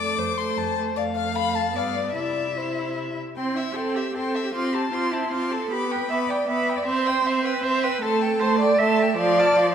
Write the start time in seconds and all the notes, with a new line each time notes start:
Already playing: F2 D5 D6
0.00 A3
0.17 F2 C5
0.38 A3 C6
0.57 F2 A5
0.77 A3
0.96 F2 A3 D5 F5
1.16 F5
1.36 B5
1.55 A5
1.74 G2 B3 D5 F5
1.96 D5
2.15 C3 E4 D5 E5
2.56 E4 C5
3.37 C4 G5 C6
3.54 E4 E5 E6
3.74 C4 A4 G5 C6
3.95 G4 E5 E6
4.15 C4 A4 G5 C6
4.35 E5 E6
4.44 G4
4.54 C4 F4 C6 D6
4.72 G4 A5 C6
4.91 C4 F4 C6 D6
5.11 E4 A5 C6
5.31 C4 F4 C6 D6
5.51 A4 A5 C6
5.70 B3 G4 B5 D6
5.90 B4 G5 B5
6.09 B3 E5 B5 D6
6.29 D5 G5 B5
6.48 B3 E5 B5 D6
6.69 G5 B5
6.76 D5
6.86 C4 C5 E5 C6
7.07 G5 E6
7.25 C4 E5 C6
7.44 B4 G5 E6
7.63 C4 C5 E5 C6
7.83 B4 G5 E6
8.02 A3 A4 A5 C6
8.21 G5 A5
8.40 A3 C5 A5 C6
8.59 D5 G5 A5
8.78 A3 E5 A5 C6
8.99 G5 A5
9.16 F3 D5 F5 C6
9.39 A5 F6
9.55 F3 F5 C6